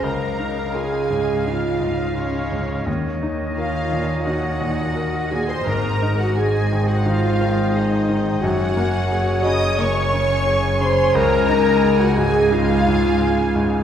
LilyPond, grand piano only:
\new Staff \with { instrumentName = "Grand piano" } { \clef bass \time 4/4 \key des \major \tempo 4 = 87 des,8 ees'8 f'8 aes,8 ees'8 aes,8 f'8 aes,8 | ees,8 ees'8 bes'8 bes,8 ees'8 bes,8 bes'8 bes,8 | aes,8 ees'8 aes'8 ees8 ees'8 ees8 aes'8 ees8 | ges,8 bes8 aes'8 des8 bes8 des8 aes'8 des8 |
des,8 ees'8 aes'8 aes,8 ees'8 aes,8 aes'8 aes,8 | }